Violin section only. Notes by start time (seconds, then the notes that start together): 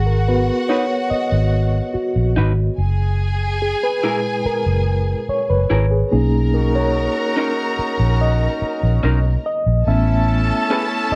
Already playing: F#4 F#5
2.78 G#4 G#5
6.13 A#4 A#5
9.86 A4 A5